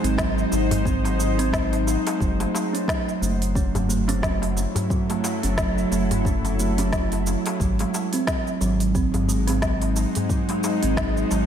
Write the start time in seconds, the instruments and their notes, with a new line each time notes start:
Already playing: synth drone G#3 D#4 C5 F#5
0.04 sub bass G#1, kalimba C4, open hi-hat, shaker
0.18 kalimba F#3, kick, snare, shaker
0.38 shaker
0.51 sub bass G#1, kalimba G#3, darbuka ka, shaker
0.71 open hi-hat, darbuka dum, shaker
0.85 kalimba C4, kick, shaker
1.05 kalimba F#3, open hi-hat, darbuka tek, shaker
1.19 kalimba G#3, shaker
1.39 kalimba C4, open hi-hat, darbuka ka, shaker
1.53 kalimba F#3, kick, snare, shaker
1.73 open hi-hat, darbuka tek
1.87 darbuka ka, shaker
2.07 open hi-hat, darbuka tek, shaker
2.20 sub bass F#1, kalimba F#3, synth drone F#3, kick, shaker
2.40 kalimba A3, open hi-hat, darbuka tek
2.55 darbuka tek, shaker
2.67 synth drone E4
2.73 kalimba C#4, open hi-hat, shaker
2.88 kalimba F#3, kick, snare, shaker
3.09 shaker
3.21 sub bass F#1, kalimba A3, shaker
3.42 open hi-hat, shaker
3.55 kalimba C#4, kick, shaker
3.75 kalimba F#3, open hi-hat, darbuka ka, darbuka dum, shaker
3.89 kalimba A3, shaker
4.08 kalimba C#4, synth drone A4, open hi-hat, darbuka ka, shaker
4.22 kalimba F#3, kick, snare, shaker
4.42 open hi-hat, darbuka tek
4.57 darbuka ka, shaker
4.75 open hi-hat, darbuka dum, shaker
4.90 kalimba F#3, kick, shaker
5.09 kalimba A3, open hi-hat, darbuka ka, darbuka tek
5.24 darbuka tek, shaker
5.43 sub bass F#1, kalimba C#4, open hi-hat, shaker
5.58 kalimba F#3, kick, snare, shaker
5.78 shaker
5.91 sub bass F#1, kalimba A3, darbuka ka, shaker
6.11 open hi-hat, darbuka dum, shaker
6.25 kalimba C#4, kick, shaker
6.45 kalimba F#3, open hi-hat, darbuka tek, shaker
6.59 kalimba A3, shaker
6.78 kalimba C#4, open hi-hat, darbuka ka, shaker
6.92 kalimba F#3, kick, snare, shaker
7.12 open hi-hat, darbuka tek
7.27 darbuka ka, shaker
7.46 open hi-hat, darbuka tek, shaker
7.59 sub bass G#1, kalimba F#3, synth drone G#3, kick, shaker
7.79 kalimba G#3, open hi-hat, darbuka tek
7.87 synth drone D#4
7.94 darbuka tek, shaker
8.13 kalimba C4, open hi-hat, shaker
8.27 kalimba F#3, kick, snare, shaker
8.47 shaker
8.56 synth drone F#5
8.61 sub bass G#1, kalimba F#3, shaker
8.80 synth drone C5, open hi-hat, shaker
8.95 kalimba C4, kick, shaker
9.14 kalimba F#3, open hi-hat, darbuka ka, darbuka dum, shaker
9.29 kalimba G#3, shaker
9.47 kalimba C4, open hi-hat, darbuka ka, shaker
9.62 kalimba F#3, kick, snare, shaker
9.82 open hi-hat, darbuka tek
9.96 darbuka ka, shaker
10.15 open hi-hat, darbuka dum, shaker
10.29 kalimba F#3, kick, shaker
10.49 kalimba G#3, open hi-hat, darbuka ka, darbuka tek
10.63 darbuka tek, shaker
10.83 sub bass G#1, kalimba C4, open hi-hat, shaker
10.97 kalimba F#3, kick, snare, shaker
11.17 shaker
11.31 sub bass G#1, kalimba F#3, darbuka ka, shaker